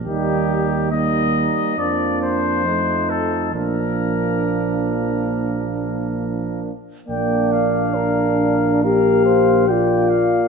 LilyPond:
<<
  \new Staff \with { instrumentName = "Trumpet" } { \time 4/4 \key bes \major \tempo 4 = 68 g'4 ees''4 d''8 c''4 a'8 | bes'2.~ bes'8 r8 | g''8 f''4. f''4 g''8 f''8 | }
  \new Staff \with { instrumentName = "Flugelhorn" } { \time 4/4 \key bes \major ees'4 ees'4 d'4 ees'4 | d'2.~ d'8 r8 | d''4 bes'4 bes'8 c''8 d''4 | }
  \new Staff \with { instrumentName = "French horn" } { \time 4/4 \key bes \major bes4 bes4 bes4 a4 | bes2.~ bes8 r8 | bes4 d'4 g'4 f'4 | }
  \new Staff \with { instrumentName = "Trombone" } { \clef bass \time 4/4 \key bes \major g4 g4 f4 f4 | f2.~ f8 r8 | d'2 bes4 bes4 | }
  \new Staff \with { instrumentName = "Tuba" } { \clef bass \time 4/4 \key bes \major ees,4. r8 f,2 | bes,,2.~ bes,,8 r8 | bes,,1 | }
>>